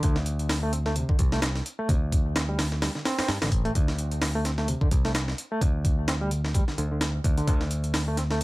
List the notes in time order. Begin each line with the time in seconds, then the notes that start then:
0.03 D2 D3, kick, closed hi-hat
0.16 snare
0.26 closed hi-hat
0.39 closed hi-hat
0.49 snare, open hi-hat
0.63 A3
0.73 C4, closed hi-hat
0.86 A3, snare
0.96 C3, closed hi-hat
1.09 D3, kick
1.19 C2, kick, closed hi-hat
1.32 A3, snare
1.42 snare, closed hi-hat
1.55 snare
1.66 closed hi-hat
1.79 A3
1.89 D2 C3, kick, closed hi-hat
2.12 kick, closed hi-hat
2.36 C4, snare, closed hi-hat
2.49 G3
2.59 D3, snare, open hi-hat
2.72 snare
2.82 G3, snare, open hi-hat
2.95 D3, snare
3.05 C4, snare, open hi-hat
3.19 C4, muted picked electric bass stroke, snare, open hi-hat
3.28 G2, snare, open hi-hat
3.42 A1 D3, snare, open hi-hat
3.52 kick, closed hi-hat
3.65 A3, closed hi-hat
3.75 D2 D3, kick, closed hi-hat
3.88 snare
3.98 closed hi-hat
4.11 closed hi-hat
4.22 snare, open hi-hat
4.35 A3
4.45 C4, snare, closed hi-hat
4.58 A3, snare
4.68 C3, closed hi-hat
4.81 D3, kick
4.91 C2, kick, closed hi-hat
5.05 A3, snare
5.15 snare, closed hi-hat
5.28 snare
5.38 closed hi-hat
5.51 A3
5.61 D2 C3, kick, closed hi-hat
5.85 kick, closed hi-hat
6.08 C4, snare, closed hi-hat
6.21 G3
6.31 D3, closed hi-hat
6.45 snare
6.55 G3, kick, closed hi-hat
6.68 D3, snare
6.78 D2 D3, closed hi-hat
6.92 D3
7.01 snare, closed hi-hat
7.24 D2, kick, closed hi-hat
7.37 D3, closed hi-hat
7.47 D2 D3, kick, closed hi-hat
7.61 snare
7.71 closed hi-hat
7.84 closed hi-hat
7.94 snare, open hi-hat
8.08 A3
8.17 C4, snare, closed hi-hat
8.31 A3, snare